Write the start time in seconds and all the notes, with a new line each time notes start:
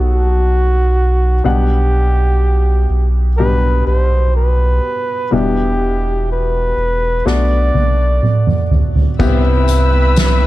Already playing: F#3 B3 D#4 A4
0.00 B1 F#4
1.44 B1 B2 G3 B3 D4 G4 F#5
2.90 B1
3.38 B2 G3 D4 G4 B4
3.87 B1 C5
4.36 B4
5.31 E1 B2 G3 B3 D4 E4 G4
6.32 B4
6.77 E1
7.25 B1 A3 B3 D4 F#4 D5, snare
7.74 B1, high tom
8.23 mid tom
8.47 mid tom
8.71 floor tom
8.96 floor tom
9.19 C2 G2 C3 B3 C4 E4 G4 B4 E5 G5 B5 E6, kick, crash, tambourine
9.44 B3
9.68 E4, closed hi-hat, tambourine
9.93 B3
10.16 E3, snare, closed hi-hat, tambourine
10.40 E4